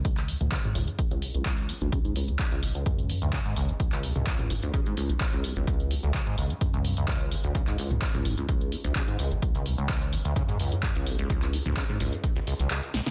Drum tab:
HH |xxoxxxoxxxoxxxox|xxoxxxoxxxoxxxox|xxoxxxoxxxoxxxox|xxoxxxoxxxoxxxox|
CP |-x--x-------x---|----x-------x---|-x--x-------x---|----x-------x---|
SD |----------------|----------------|----------------|----------------|
T2 |---o-oo---------|----------------|---o-oo---------|----------------|
BD |o---o---o---o---|o---o---o---o---|o---o---o---o---|o---o---o---o---|

HH |xxoxxxoxxxoxxxox|xxoxxxoxxxoxxxox|xxoxxxoxxxoxxxox|
CP |-x--x-------x---|----x-------x---|-x--x-------x---|
SD |----------------|----------------|--------------oo|
T2 |---o-oo---------|----------------|---o-oo---------|
BD |o---o---o---o---|o---o---o---o---|o---o---o-------|